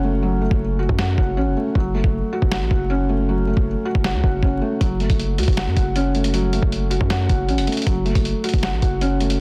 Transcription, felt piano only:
Already playing: F#3 A3 C#4 F#4 F#5
0.04 A3
0.22 F#3
0.41 A3
0.79 F#4
0.99 F#5
1.18 F#4
1.37 C#4
1.57 A3
1.75 F#3
1.94 A3
2.33 F#4
2.52 F#5
2.71 F#4
2.90 C#4
3.09 A3
3.29 F#3
3.47 A3
3.85 F#4
4.04 F#5
4.23 F#4
4.43 C#4
4.61 A3
4.81 F#3
5.00 A3
5.39 F#4
5.57 F#5
5.77 F#4
5.96 C#4
6.15 A3
6.34 F#3
6.53 A3
6.90 F#4
7.10 F#5
7.29 F#4
7.48 C#4
7.68 A3
7.87 F#3
8.05 A3
8.44 F#4
8.63 F#5
8.82 F#4
9.01 C#4
9.20 A3

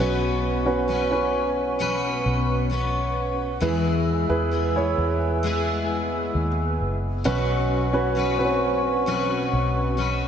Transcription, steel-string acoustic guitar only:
Already playing: B2 F#3
0.00 B3 C#4 B4
0.88 F#3 B3 C#4 B4
1.79 B2 F#3 B3 C#4 B4
2.70 F#3 B3 C#4 B4
3.61 E3 G#3 B3 E4 G#4
4.51 G#3 B3 E4 G#4
5.43 G#3 B3 E4 G#4
7.24 B2 F#3 C#4 F#4 B4
8.15 F#3 C#4 F#4 B4
9.06 B2 F#3 C#4 F#4 B4
9.97 F#3 C#4 F#4 B4

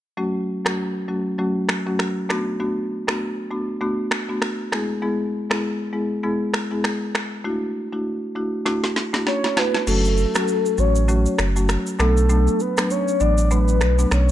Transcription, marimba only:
0.17 F#3 A3 C#4 F#4
0.65 F#3 A3 C#4 F#4
1.08 F#3 A3 C#4 F#4
1.38 F#3 A3 C#4 F#4
1.86 F#3 A3 C#4 F#4
2.29 A3 B3 D4 F#4
2.60 A3 B3 D4 F#4
3.08 A3 B3 D4 F#4
3.51 A3 B3 D4 F#4
3.81 A3 B3 D4 F#4
4.29 A3 B3 D4 F#4
4.72 G#3 B3 E4 G#4
5.02 G#3 B3 E4 G#4
5.50 G#3 B3 E4 G#4
5.93 G#3 B3 E4 G#4
6.23 G#3 B3 E4 G#4
6.71 G#3 B3 E4 G#4
7.44 A3 D4 E4 F#4
7.92 A3 D4 E4 F#4
8.35 A3 D4 E4 F#4
8.65 A3 D4 E4 F#4
9.13 A3 D4 E4 F#4
9.57 A3 D4 E4 F#4
9.87 F#3 A3 C#4 F#4
10.35 F#3 A3 C#4 F#4
10.78 F#3 A3 C#4 F#4
11.08 F#3 A3 C#4 F#4
11.56 F#3 A3 C#4 F#4
11.99 F#3 A3 B3 D4
12.29 F#3 A3 B3 D4
12.77 F#3 A3 B3 D4
13.20 F#3 A3 B3 D4
13.51 F#3 A3 B3 D4
13.98 F#3 A3 B3 D4

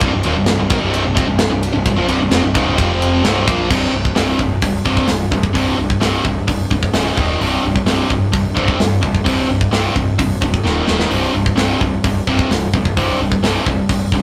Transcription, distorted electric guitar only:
0.01 C2 G2
0.12 C2 G2
0.24 D#2 A#2
0.36 C2 G2
0.48 C2 G2
0.60 C2 G2
0.70 G#2 D#3
0.81 C2 G2 C3
1.04 C2 G2
1.15 F2 C3
1.27 C2 G2
1.39 C2 G2
1.50 C2 G2
1.73 C2 G2
1.86 C2 G2
1.96 A#2 F3
2.07 C2 G2
2.19 C2 G2
2.31 F2 C3
2.43 C2 G2
2.54 C#2 G#2 C#3
2.76 F2 C3 F3
3.24 C2 G2 C3
3.47 A#2 F3 A#3
3.70 C2 G2 C3
3.93 C2 G2
4.15 C2 G2 C3
4.40 C2 G2
4.62 C2 G2
4.85 C2 G2 C3
5.08 C2 G2
5.31 C2 G2
5.54 C2 G2 C3
5.78 C2 G2
6.00 C2 G2 C3
6.24 C2 G2
6.47 C2 G2
6.71 C2 G2
6.94 C#2 G#2 C#3
7.18 D#2 A#2 D#3
7.41 C2 G2 C3
7.64 C2 G2
7.86 C2 G2 C3
8.09 C2 G2
8.33 C2 G2
8.55 C2 G2 C3
8.79 C2 G2
9.03 C2 G2
9.25 C2 G2 C3
9.49 C2 G2
9.71 C2 G2 C3
9.95 C2 G2
10.18 C2 G2
10.41 C2 G2
10.63 D#2 A#2 D#3
10.86 D#2 A#2 D#3
11.10 C2 G2 C3
11.34 C2 G2
11.57 C2 G2 C3
11.81 C2 G2
12.04 C2 G2
12.27 C2 G2 C3
12.51 C2 G2
12.75 C2 G2
12.97 C2 G2 C3
13.21 C2 G2
13.43 C2 G2 C3
13.67 C2 G2
13.89 C2 G2
14.13 C2 G2

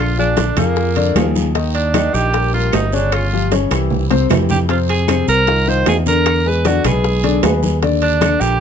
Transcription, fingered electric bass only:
Already playing: A#1
0.57 F2
1.15 D#2
2.14 A#1
2.73 G1
3.71 C2
4.30 F2
5.28 C2
5.87 E2
6.85 B1
7.43 D#2
8.41 A#1

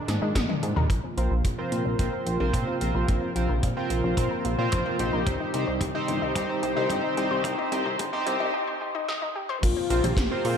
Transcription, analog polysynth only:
1.18 C4 F4 A#4 C5
1.58 C4 F4 A#4 C5
1.99 C4 F4 A#4 C5
2.40 C4 F4 A#4 C5
2.81 C4 F4 A#4 C5
3.36 C4 F4 A#4 C5
3.77 C4 F4 A#4 C5
4.18 C4 F4 A#4 C5
4.59 C4 F4 A#4 C5
4.99 C4 D#4 G4 C5
5.54 C4 D#4 G4 C5
5.95 C4 D#4 G4 C5
6.36 C4 D#4 G4 C5
6.77 C4 D#4 G4 C5
7.17 C4 D#4 G4 C5
7.72 C4 D#4 G4 C5
8.13 C4 D#4 G4 C5
9.90 C4 F4 A#4 C5
10.31 C4 F4 A#4 C5

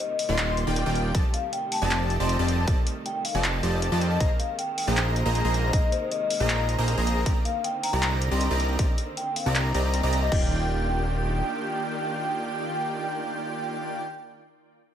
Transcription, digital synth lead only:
0.29 C6
0.67 G5
0.86 G5
1.15 A5
1.82 A5
2.20 A5
2.39 A5
2.68 A5
3.35 A5
3.63 A5
3.92 A5
4.20 A#5
4.87 A#5
5.26 A#5
5.45 A#5
5.73 A#5
6.40 A#5
6.79 A#5
6.98 A#5
7.26 A#5
7.93 A#5
8.32 A#5
8.51 A#5
8.79 A#5
9.46 A#5
9.75 A#5
10.03 A#5
10.32 G5

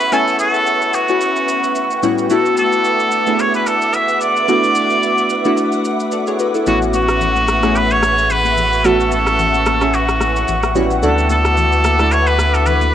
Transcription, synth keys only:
Already playing: A3 B3 C#4 E4 G#4
0.12 A3 B3 C#4 E4 G#5
1.09 A3 B3 C#4 E4 F#4
2.03 A2 G3 B3 C#4 E4 F#4
2.30 A3 B3 D4 E4 F#4
3.27 A3 B3 D4 E4 G#4
4.48 A3 B3 D4 E4 F#4
5.45 A3 B3 D4 E4 F#4
6.12 A4 D5
6.28 G#4 C#5
6.40 F#4 B4
6.55 E4 A4
6.66 A3 B3 C#4 E4 F#4
7.63 A3 B3 C#4 E4 G#4
8.84 A3 B3 C#4 E4 F#4
9.81 A3 B3 C#4 E4 G#4
10.75 G3 B3 C#4 E4 F#4
11.02 A3 B3 D4 E4 F#4
11.99 A3 B3 D4 E4 A4

